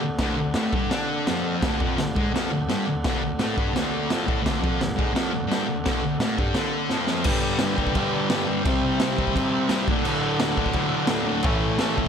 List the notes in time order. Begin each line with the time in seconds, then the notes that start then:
Already playing: A4 D5 F#5
0.02 D2
0.19 D2 D3, kick, snare, crash
0.37 D2
0.54 A2 A3, snare, crash
0.73 G2 G3, kick
0.90 D3 D4, snare, crash
1.27 F2 F3, snare, crash
1.62 D2 D3 A4 D5 F#5, kick, snare, crash
1.80 F2 F3, kick
1.98 D2, snare, crash
2.15 G#2 G#3, kick
2.33 F2 F3, snare, crash
2.51 D2
2.69 G2 G3, snare, crash
2.87 D2
3.04 D2 D3, kick, snare, crash
3.23 D2
3.39 A2 A3, snare, crash
3.57 G2 G3, kick
3.74 D2 D3, snare, crash
4.10 F2 F3, snare, crash
4.26 A2 A3, kick
4.42 D2 D3, kick, snare
4.46 A4 D5 F#5, crash
4.61 F2 F3, kick
4.80 D2, snare, crash
4.96 G#2 G#3, kick
5.14 F2 F3, snare, crash
5.33 D2
5.48 G2 G3, snare
5.52 crash
5.67 D2
5.84 D2 D3, kick, snare, crash
6.03 D2
6.20 A2 A3, snare, crash
6.38 G2 G3 D5, kick
6.55 D3 D4, snare, crash
6.60 F#5
6.78 F#5
6.90 F2 F3, snare
6.94 A5
7.01 C6
7.07 snare
7.24 G2 D3 G3 B4 D5, kick, crash
7.28 G5
7.59 G2 D3 G3, snare, crash
7.77 G2 D3 G3, kick
7.87 kick
7.94 G2 D3 G3, kick, crash
8.30 G2 D3 G3, snare, crash
8.48 G2 D3 G3
8.65 C3 G3 C4 C5 E5, kick, crash
8.69 G5
9.00 C3 G3 C4, snare, crash
9.18 C3 G3 C4, kick
9.27 kick
9.35 C3 G3 C4, kick, crash
9.69 C3 G3 C4, snare, crash
9.88 D2 A2 D3 A4 D5 F#5, kick
10.05 D2 A2 D3, crash
10.40 D2 A2 D3, snare, crash
10.57 D2 A2 D3, kick
10.66 kick
10.73 D2 A2 D3, kick, crash
11.07 D2 A2 D3, snare, crash
11.26 D2 A2 D3
11.43 A2 E3 A3 A4 C#5 E5, kick, crash
11.79 A2 E3 A3, snare, crash
11.97 A2 E3 A3, kick